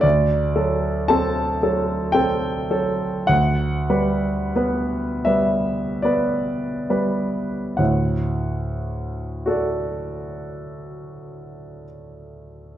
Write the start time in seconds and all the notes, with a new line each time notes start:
0.01 D2 D5
0.56 F#3 A4
1.08 C4 A4 A5
1.62 F#3 A4
2.12 C4 A4 G5
2.70 F#3 A4
3.27 D2 F#5
3.90 G3 B4
4.56 B3 B4
5.25 G3 B4 E5
6.02 B3 B4 D5
6.90 G3 B4
7.77 D2 A2 F#5
9.46 F#4 A4 D5